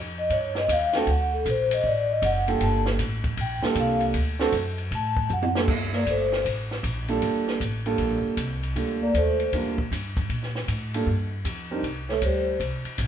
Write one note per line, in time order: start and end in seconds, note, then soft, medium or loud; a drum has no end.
0.00 0.29 F2 medium
0.18 0.30 D#5 medium
0.30 0.67 G2 medium
0.30 0.56 C#5 medium
0.30 kick soft
0.30 ride medium
0.55 0.69 D#5 medium
0.55 snare medium
0.68 1.06 D#2 medium
0.68 0.95 F5 medium
0.68 kick soft
0.68 hi-hat pedal medium
0.68 ride medium
0.93 1.06 A3 medium
0.93 1.06 C4 medium
0.93 1.06 D4 medium
0.93 1.07 F#4 medium
0.93 1.07 A4 medium
0.93 snare medium
0.93 ride medium
1.07 1.44 D2 medium
1.07 1.33 F#5 medium
1.07 kick soft
1.07 ride medium
1.33 1.46 A4 medium
1.45 1.83 A#1 medium
1.45 kick soft
1.45 hi-hat pedal medium
1.45 ride medium
1.50 1.72 C5 loud
1.71 1.85 D#5 medium
1.71 ride medium
1.84 2.21 A1 medium
1.84 2.10 D5 medium
1.84 kick soft
2.11 2.23 D#5 loud
2.22 2.60 F#1 loud
2.22 2.48 F#5 medium
2.22 kick soft
2.22 hi-hat pedal medium
2.22 ride medium
2.47 2.96 G3 medium
2.47 2.97 A#3 medium
2.47 2.97 D4 medium
2.47 2.97 F4 medium
2.47 2.97 A4 medium
2.47 2.61 G5 medium
2.47 ride soft
2.60 2.98 G1 medium
2.60 2.78 A5 loud
2.60 kick soft
2.60 ride medium
2.86 snare medium
2.99 3.36 A1 medium
2.99 kick soft
2.99 hi-hat pedal medium
2.99 ride medium
3.24 kick medium
3.24 ride soft
3.37 3.61 A#1 medium
3.37 3.75 G5 medium
3.37 kick soft
3.37 ride medium
3.63 4.12 G3 medium
3.63 4.12 A#3 medium
3.63 4.12 D4 medium
3.63 4.12 F4 medium
3.63 4.12 A4 medium
3.63 muted upright bass stroke soft
3.63 snare medium
3.75 4.13 C2 loud
3.75 kick soft
3.75 hi-hat pedal medium
3.75 ride medium
3.80 4.03 F5 medium
4.01 ride soft
4.14 4.52 D2 medium
4.14 kick soft
4.14 ride medium
4.40 4.52 A3 medium
4.40 4.52 C4 medium
4.40 4.52 D4 medium
4.40 4.52 F#4 medium
4.40 4.52 A4 loud
4.40 snare medium
4.52 4.90 F#2 medium
4.52 kick soft
4.52 hi-hat pedal medium
4.52 ride medium
4.78 ride soft
4.91 5.29 A2 medium
4.91 5.29 A5 loud
4.91 kick soft
4.91 ride medium
5.17 kick medium
5.29 5.67 F#2 loud
5.29 5.47 F#5 medium
5.29 hi-hat pedal medium
5.43 high tom medium
5.55 5.68 G3 medium
5.55 5.68 A#3 medium
5.55 5.68 D4 medium
5.55 5.68 F4 medium
5.55 5.68 A4 medium
5.55 snare medium
5.68 6.05 G2 medium
5.68 kick medium
5.68 crash medium
5.93 6.06 A#3 medium
5.93 6.07 D5 medium
5.93 snare soft
6.06 6.44 G1 medium
6.06 6.43 A3 medium
6.06 6.44 C5 medium
6.06 kick soft
6.06 hi-hat pedal medium
6.06 ride medium
6.32 snare soft
6.45 6.83 A1 medium
6.45 kick soft
6.45 ride medium
6.71 snare soft
6.83 7.21 A#1 loud
6.83 kick soft
6.83 hi-hat pedal medium
6.83 ride medium
7.08 7.58 G3 medium
7.08 7.58 A#3 medium
7.08 7.58 D4 medium
7.08 7.58 F4 medium
7.08 7.58 A4 medium
7.08 ride soft
7.22 7.59 G1 medium
7.22 kick soft
7.22 ride medium
7.48 snare medium
7.60 7.98 A1 medium
7.60 kick soft
7.60 hi-hat pedal medium
7.60 ride medium
7.86 8.35 G3 medium
7.86 8.35 A#3 medium
7.86 8.35 D4 medium
7.86 8.35 F4 medium
7.86 8.35 A4 medium
7.86 ride soft
7.98 8.22 A#1 medium
7.98 kick soft
7.98 ride medium
8.24 muted upright bass stroke soft
8.37 8.75 C2 loud
8.37 kick soft
8.37 hi-hat pedal medium
8.37 ride medium
8.63 ride soft
8.76 9.13 D2 medium
8.76 8.99 G3 medium
8.76 8.99 A#3 soft
8.76 8.99 D4 medium
8.76 8.99 F4 medium
8.76 8.99 A4 medium
8.76 kick soft
8.76 ride medium
9.01 9.14 A#3 medium
9.01 9.15 D5 loud
9.14 9.52 D#2 medium
9.14 9.51 A3 medium
9.14 9.51 C5 medium
9.14 kick soft
9.14 hi-hat pedal medium
9.14 ride medium
9.40 ride soft
9.53 9.65 F2 medium
9.53 9.76 G3 medium
9.53 9.76 A#3 medium
9.53 9.76 D4 medium
9.53 9.76 F4 medium
9.53 9.76 A#4 medium
9.53 kick soft
9.53 ride medium
9.65 9.77 D2 medium
9.78 9.90 A#1 medium
9.78 kick soft
9.91 10.29 G2 medium
9.91 kick soft
9.91 hi-hat pedal medium
9.91 ride medium
10.17 kick medium
10.17 ride soft
10.29 10.67 A#2 medium
10.29 kick soft
10.29 ride medium
10.43 snare soft
10.55 snare soft
10.68 11.05 A2 medium
10.68 kick soft
10.68 hi-hat pedal medium
10.68 ride medium
10.94 11.06 G3 medium
10.94 11.06 A#3 medium
10.94 11.06 D4 medium
10.94 11.06 F4 medium
10.94 11.06 A4 medium
10.94 ride medium
11.06 11.44 G2 medium
11.06 kick soft
11.45 11.82 F2 medium
11.45 kick soft
11.45 hi-hat pedal medium
11.45 ride medium
11.71 11.82 G3 medium
11.71 11.82 C4 medium
11.71 11.82 D4 medium
11.71 11.83 D#4 medium
11.71 11.83 A#4 medium
11.83 12.20 C2 medium
11.83 kick soft
11.83 ride medium
12.09 12.21 A3 medium
12.09 12.22 C#5 medium
12.09 snare soft
12.22 12.59 D2 medium
12.22 12.58 G3 medium
12.22 12.58 C5 medium
12.22 kick soft
12.22 hi-hat pedal medium
12.22 ride medium
12.60 12.83 C2 medium
12.60 kick soft
12.60 ride medium
12.85 muted upright bass stroke soft
12.85 ride soft
12.98 13.07 A#1 loud
12.98 kick soft
12.98 hi-hat pedal medium
12.98 ride medium